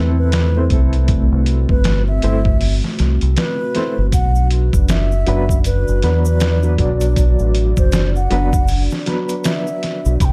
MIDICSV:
0, 0, Header, 1, 6, 480
1, 0, Start_track
1, 0, Tempo, 759494
1, 688, Time_signature, 4, 2, 24, 8
1, 6525, End_track
2, 0, Start_track
2, 0, Title_t, "Flute"
2, 0, Program_c, 0, 73
2, 0, Note_on_c, 0, 71, 96
2, 69, Note_off_c, 0, 71, 0
2, 114, Note_on_c, 0, 71, 100
2, 420, Note_off_c, 0, 71, 0
2, 1074, Note_on_c, 0, 71, 89
2, 1284, Note_off_c, 0, 71, 0
2, 1315, Note_on_c, 0, 76, 100
2, 1735, Note_off_c, 0, 76, 0
2, 2130, Note_on_c, 0, 71, 101
2, 2570, Note_off_c, 0, 71, 0
2, 2610, Note_on_c, 0, 78, 96
2, 2830, Note_off_c, 0, 78, 0
2, 3092, Note_on_c, 0, 76, 97
2, 3531, Note_off_c, 0, 76, 0
2, 3576, Note_on_c, 0, 71, 98
2, 3912, Note_off_c, 0, 71, 0
2, 3956, Note_on_c, 0, 71, 101
2, 4261, Note_off_c, 0, 71, 0
2, 4916, Note_on_c, 0, 72, 89
2, 5125, Note_off_c, 0, 72, 0
2, 5156, Note_on_c, 0, 78, 97
2, 5576, Note_off_c, 0, 78, 0
2, 5974, Note_on_c, 0, 76, 92
2, 6412, Note_off_c, 0, 76, 0
2, 6454, Note_on_c, 0, 83, 83
2, 6477, Note_on_c, 0, 79, 90
2, 6484, Note_off_c, 0, 83, 0
2, 6525, Note_off_c, 0, 79, 0
2, 6525, End_track
3, 0, Start_track
3, 0, Title_t, "Analog synth pad"
3, 0, Program_c, 1, 89
3, 0, Note_on_c, 1, 57, 84
3, 0, Note_on_c, 1, 60, 90
3, 0, Note_on_c, 1, 64, 78
3, 667, Note_off_c, 1, 64, 0
3, 685, Note_on_c, 1, 66, 72
3, 2581, Note_off_c, 1, 57, 0
3, 2581, Note_off_c, 1, 60, 0
3, 2607, Note_on_c, 1, 62, 80
3, 2608, Note_on_c, 1, 74, 89
3, 6421, Note_off_c, 1, 66, 0
3, 6422, Note_off_c, 1, 62, 0
3, 6423, Note_off_c, 1, 74, 0
3, 6447, Note_on_c, 1, 64, 75
3, 6448, Note_on_c, 1, 55, 84
3, 6448, Note_on_c, 1, 72, 88
3, 6525, Note_off_c, 1, 55, 0
3, 6525, Note_off_c, 1, 64, 0
3, 6525, Note_off_c, 1, 72, 0
3, 6525, End_track
4, 0, Start_track
4, 0, Title_t, "Upright piano"
4, 0, Program_c, 2, 0
4, 0, Note_on_c, 2, 57, 77
4, 0, Note_on_c, 2, 60, 74
4, 0, Note_on_c, 2, 64, 74
4, 0, Note_on_c, 2, 69, 91
4, 318, Note_off_c, 2, 57, 0
4, 319, Note_off_c, 2, 60, 0
4, 320, Note_off_c, 2, 64, 0
4, 322, Note_off_c, 2, 69, 0
4, 353, Note_on_c, 2, 57, 79
4, 357, Note_on_c, 2, 60, 74
4, 358, Note_on_c, 2, 64, 70
4, 362, Note_on_c, 2, 72, 86
4, 426, Note_off_c, 2, 57, 0
4, 428, Note_off_c, 2, 60, 0
4, 428, Note_off_c, 2, 64, 0
4, 430, Note_off_c, 2, 72, 0
4, 445, Note_on_c, 2, 57, 79
4, 450, Note_on_c, 2, 60, 67
4, 455, Note_on_c, 2, 64, 68
4, 462, Note_on_c, 2, 69, 82
4, 1383, Note_off_c, 2, 57, 0
4, 1386, Note_off_c, 2, 60, 0
4, 1388, Note_off_c, 2, 64, 0
4, 1392, Note_off_c, 2, 69, 0
4, 1410, Note_on_c, 2, 57, 101
4, 1413, Note_on_c, 2, 60, 91
4, 1415, Note_on_c, 2, 64, 94
4, 1417, Note_on_c, 2, 72, 110
4, 1510, Note_off_c, 2, 57, 0
4, 1511, Note_off_c, 2, 60, 0
4, 1513, Note_off_c, 2, 64, 0
4, 1514, Note_off_c, 2, 72, 0
4, 2368, Note_on_c, 2, 57, 95
4, 2372, Note_on_c, 2, 60, 83
4, 2374, Note_on_c, 2, 64, 80
4, 2376, Note_on_c, 2, 72, 110
4, 2469, Note_off_c, 2, 57, 0
4, 2471, Note_off_c, 2, 60, 0
4, 2472, Note_off_c, 2, 64, 0
4, 2473, Note_off_c, 2, 72, 0
4, 3329, Note_on_c, 2, 54, 91
4, 3331, Note_on_c, 2, 59, 86
4, 3333, Note_on_c, 2, 62, 84
4, 3338, Note_on_c, 2, 71, 106
4, 3430, Note_off_c, 2, 54, 0
4, 3431, Note_off_c, 2, 59, 0
4, 3432, Note_off_c, 2, 62, 0
4, 3434, Note_off_c, 2, 71, 0
4, 3812, Note_on_c, 2, 54, 78
4, 3812, Note_on_c, 2, 59, 72
4, 3815, Note_on_c, 2, 62, 69
4, 3818, Note_on_c, 2, 71, 85
4, 4159, Note_off_c, 2, 54, 0
4, 4159, Note_off_c, 2, 59, 0
4, 4160, Note_off_c, 2, 62, 0
4, 4161, Note_off_c, 2, 71, 0
4, 4193, Note_on_c, 2, 54, 77
4, 4195, Note_on_c, 2, 59, 76
4, 4199, Note_on_c, 2, 62, 68
4, 4202, Note_on_c, 2, 71, 88
4, 4265, Note_off_c, 2, 54, 0
4, 4267, Note_off_c, 2, 59, 0
4, 4268, Note_off_c, 2, 62, 0
4, 4270, Note_off_c, 2, 71, 0
4, 4286, Note_on_c, 2, 54, 79
4, 4290, Note_on_c, 2, 47, 75
4, 4295, Note_on_c, 2, 62, 75
4, 4301, Note_on_c, 2, 74, 90
4, 5224, Note_off_c, 2, 54, 0
4, 5226, Note_off_c, 2, 47, 0
4, 5228, Note_off_c, 2, 62, 0
4, 5231, Note_off_c, 2, 74, 0
4, 5247, Note_on_c, 2, 54, 103
4, 5250, Note_on_c, 2, 59, 99
4, 5252, Note_on_c, 2, 62, 86
4, 5256, Note_on_c, 2, 71, 108
4, 5349, Note_off_c, 2, 54, 0
4, 5350, Note_off_c, 2, 59, 0
4, 5351, Note_off_c, 2, 62, 0
4, 5353, Note_off_c, 2, 71, 0
4, 5726, Note_on_c, 2, 54, 77
4, 5730, Note_on_c, 2, 59, 73
4, 5736, Note_on_c, 2, 62, 71
4, 5741, Note_on_c, 2, 71, 86
4, 6435, Note_off_c, 2, 54, 0
4, 6437, Note_off_c, 2, 59, 0
4, 6440, Note_off_c, 2, 62, 0
4, 6443, Note_off_c, 2, 71, 0
4, 6525, End_track
5, 0, Start_track
5, 0, Title_t, "Fingered electric bass"
5, 0, Program_c, 3, 33
5, 0, Note_on_c, 3, 40, 88
5, 432, Note_off_c, 3, 40, 0
5, 449, Note_on_c, 3, 36, 88
5, 804, Note_off_c, 3, 36, 0
5, 836, Note_on_c, 3, 36, 100
5, 1039, Note_off_c, 3, 36, 0
5, 1072, Note_on_c, 3, 31, 86
5, 1390, Note_off_c, 3, 31, 0
5, 1412, Note_on_c, 3, 31, 94
5, 1766, Note_off_c, 3, 31, 0
5, 1895, Note_on_c, 3, 36, 78
5, 2017, Note_off_c, 3, 36, 0
5, 2037, Note_on_c, 3, 36, 87
5, 2119, Note_off_c, 3, 36, 0
5, 2517, Note_on_c, 3, 31, 81
5, 2599, Note_off_c, 3, 31, 0
5, 2609, Note_on_c, 3, 35, 101
5, 2964, Note_off_c, 3, 35, 0
5, 2994, Note_on_c, 3, 30, 83
5, 3311, Note_off_c, 3, 30, 0
5, 3335, Note_on_c, 3, 30, 98
5, 3687, Note_off_c, 3, 30, 0
5, 3719, Note_on_c, 3, 30, 82
5, 3800, Note_off_c, 3, 30, 0
5, 3816, Note_on_c, 3, 40, 93
5, 4273, Note_off_c, 3, 40, 0
5, 4292, Note_on_c, 3, 35, 86
5, 4645, Note_off_c, 3, 35, 0
5, 4678, Note_on_c, 3, 33, 101
5, 4880, Note_off_c, 3, 33, 0
5, 4915, Note_on_c, 3, 30, 79
5, 5231, Note_off_c, 3, 30, 0
5, 5252, Note_on_c, 3, 30, 97
5, 5606, Note_off_c, 3, 30, 0
5, 6358, Note_on_c, 3, 35, 90
5, 6439, Note_off_c, 3, 35, 0
5, 6451, Note_on_c, 3, 36, 104
5, 6525, Note_off_c, 3, 36, 0
5, 6525, End_track
6, 0, Start_track
6, 0, Title_t, "Drums"
6, 204, Note_on_c, 9, 42, 92
6, 211, Note_on_c, 9, 38, 119
6, 267, Note_off_c, 9, 42, 0
6, 274, Note_off_c, 9, 38, 0
6, 444, Note_on_c, 9, 42, 69
6, 445, Note_on_c, 9, 36, 96
6, 507, Note_off_c, 9, 42, 0
6, 508, Note_off_c, 9, 36, 0
6, 587, Note_on_c, 9, 42, 43
6, 650, Note_off_c, 9, 42, 0
6, 683, Note_on_c, 9, 42, 91
6, 685, Note_on_c, 9, 36, 115
6, 746, Note_off_c, 9, 42, 0
6, 748, Note_off_c, 9, 36, 0
6, 924, Note_on_c, 9, 42, 69
6, 987, Note_off_c, 9, 42, 0
6, 1069, Note_on_c, 9, 36, 101
6, 1132, Note_off_c, 9, 36, 0
6, 1164, Note_on_c, 9, 42, 92
6, 1171, Note_on_c, 9, 38, 117
6, 1227, Note_off_c, 9, 42, 0
6, 1234, Note_off_c, 9, 38, 0
6, 1405, Note_on_c, 9, 42, 71
6, 1468, Note_off_c, 9, 42, 0
6, 1549, Note_on_c, 9, 36, 96
6, 1612, Note_off_c, 9, 36, 0
6, 1647, Note_on_c, 9, 46, 81
6, 1710, Note_off_c, 9, 46, 0
6, 1798, Note_on_c, 9, 38, 38
6, 1861, Note_off_c, 9, 38, 0
6, 1888, Note_on_c, 9, 42, 69
6, 1895, Note_on_c, 9, 38, 47
6, 1951, Note_off_c, 9, 42, 0
6, 1958, Note_off_c, 9, 38, 0
6, 2031, Note_on_c, 9, 42, 46
6, 2094, Note_off_c, 9, 42, 0
6, 2127, Note_on_c, 9, 42, 97
6, 2134, Note_on_c, 9, 38, 116
6, 2190, Note_off_c, 9, 42, 0
6, 2197, Note_off_c, 9, 38, 0
6, 2368, Note_on_c, 9, 42, 63
6, 2375, Note_on_c, 9, 38, 40
6, 2431, Note_off_c, 9, 42, 0
6, 2438, Note_off_c, 9, 38, 0
6, 2606, Note_on_c, 9, 42, 90
6, 2607, Note_on_c, 9, 36, 111
6, 2609, Note_on_c, 9, 82, 64
6, 2669, Note_off_c, 9, 42, 0
6, 2670, Note_off_c, 9, 36, 0
6, 2672, Note_off_c, 9, 82, 0
6, 2751, Note_on_c, 9, 82, 37
6, 2814, Note_off_c, 9, 82, 0
6, 2847, Note_on_c, 9, 42, 69
6, 2910, Note_off_c, 9, 42, 0
6, 2990, Note_on_c, 9, 36, 107
6, 2994, Note_on_c, 9, 82, 77
6, 3054, Note_off_c, 9, 36, 0
6, 3057, Note_off_c, 9, 82, 0
6, 3087, Note_on_c, 9, 42, 91
6, 3087, Note_on_c, 9, 82, 60
6, 3094, Note_on_c, 9, 38, 116
6, 3150, Note_off_c, 9, 82, 0
6, 3151, Note_off_c, 9, 42, 0
6, 3158, Note_off_c, 9, 38, 0
6, 3234, Note_on_c, 9, 82, 40
6, 3297, Note_off_c, 9, 82, 0
6, 3327, Note_on_c, 9, 42, 75
6, 3391, Note_off_c, 9, 42, 0
6, 3471, Note_on_c, 9, 36, 106
6, 3479, Note_on_c, 9, 82, 90
6, 3534, Note_off_c, 9, 36, 0
6, 3543, Note_off_c, 9, 82, 0
6, 3567, Note_on_c, 9, 42, 89
6, 3572, Note_on_c, 9, 82, 64
6, 3630, Note_off_c, 9, 42, 0
6, 3635, Note_off_c, 9, 82, 0
6, 3714, Note_on_c, 9, 82, 41
6, 3778, Note_off_c, 9, 82, 0
6, 3808, Note_on_c, 9, 42, 68
6, 3815, Note_on_c, 9, 38, 42
6, 3871, Note_off_c, 9, 42, 0
6, 3878, Note_off_c, 9, 38, 0
6, 3951, Note_on_c, 9, 82, 78
6, 4014, Note_off_c, 9, 82, 0
6, 4045, Note_on_c, 9, 82, 64
6, 4047, Note_on_c, 9, 42, 92
6, 4054, Note_on_c, 9, 38, 119
6, 4108, Note_off_c, 9, 82, 0
6, 4110, Note_off_c, 9, 42, 0
6, 4117, Note_off_c, 9, 38, 0
6, 4190, Note_on_c, 9, 82, 38
6, 4253, Note_off_c, 9, 82, 0
6, 4288, Note_on_c, 9, 36, 100
6, 4288, Note_on_c, 9, 42, 71
6, 4351, Note_off_c, 9, 36, 0
6, 4351, Note_off_c, 9, 42, 0
6, 4428, Note_on_c, 9, 82, 70
6, 4431, Note_on_c, 9, 42, 45
6, 4491, Note_off_c, 9, 82, 0
6, 4495, Note_off_c, 9, 42, 0
6, 4527, Note_on_c, 9, 42, 88
6, 4528, Note_on_c, 9, 36, 114
6, 4533, Note_on_c, 9, 82, 62
6, 4591, Note_off_c, 9, 36, 0
6, 4591, Note_off_c, 9, 42, 0
6, 4597, Note_off_c, 9, 82, 0
6, 4671, Note_on_c, 9, 82, 33
6, 4734, Note_off_c, 9, 82, 0
6, 4769, Note_on_c, 9, 42, 78
6, 4832, Note_off_c, 9, 42, 0
6, 4910, Note_on_c, 9, 82, 69
6, 4911, Note_on_c, 9, 36, 107
6, 4973, Note_off_c, 9, 82, 0
6, 4975, Note_off_c, 9, 36, 0
6, 5005, Note_on_c, 9, 82, 60
6, 5007, Note_on_c, 9, 42, 96
6, 5014, Note_on_c, 9, 38, 123
6, 5069, Note_off_c, 9, 82, 0
6, 5071, Note_off_c, 9, 42, 0
6, 5078, Note_off_c, 9, 38, 0
6, 5157, Note_on_c, 9, 82, 37
6, 5220, Note_off_c, 9, 82, 0
6, 5249, Note_on_c, 9, 42, 67
6, 5313, Note_off_c, 9, 42, 0
6, 5391, Note_on_c, 9, 36, 100
6, 5391, Note_on_c, 9, 82, 75
6, 5454, Note_off_c, 9, 82, 0
6, 5455, Note_off_c, 9, 36, 0
6, 5483, Note_on_c, 9, 82, 61
6, 5489, Note_on_c, 9, 46, 79
6, 5546, Note_off_c, 9, 82, 0
6, 5552, Note_off_c, 9, 46, 0
6, 5629, Note_on_c, 9, 82, 37
6, 5641, Note_on_c, 9, 38, 37
6, 5692, Note_off_c, 9, 82, 0
6, 5704, Note_off_c, 9, 38, 0
6, 5728, Note_on_c, 9, 42, 71
6, 5735, Note_on_c, 9, 38, 49
6, 5792, Note_off_c, 9, 42, 0
6, 5799, Note_off_c, 9, 38, 0
6, 5870, Note_on_c, 9, 82, 70
6, 5873, Note_on_c, 9, 42, 45
6, 5933, Note_off_c, 9, 82, 0
6, 5936, Note_off_c, 9, 42, 0
6, 5967, Note_on_c, 9, 82, 68
6, 5969, Note_on_c, 9, 42, 88
6, 5976, Note_on_c, 9, 38, 119
6, 6030, Note_off_c, 9, 82, 0
6, 6032, Note_off_c, 9, 42, 0
6, 6039, Note_off_c, 9, 38, 0
6, 6112, Note_on_c, 9, 82, 40
6, 6176, Note_off_c, 9, 82, 0
6, 6211, Note_on_c, 9, 42, 72
6, 6218, Note_on_c, 9, 38, 42
6, 6275, Note_off_c, 9, 42, 0
6, 6282, Note_off_c, 9, 38, 0
6, 6353, Note_on_c, 9, 82, 65
6, 6417, Note_off_c, 9, 82, 0
6, 6448, Note_on_c, 9, 36, 113
6, 6449, Note_on_c, 9, 42, 93
6, 6452, Note_on_c, 9, 82, 56
6, 6511, Note_off_c, 9, 36, 0
6, 6512, Note_off_c, 9, 42, 0
6, 6515, Note_off_c, 9, 82, 0
6, 6525, End_track
0, 0, End_of_file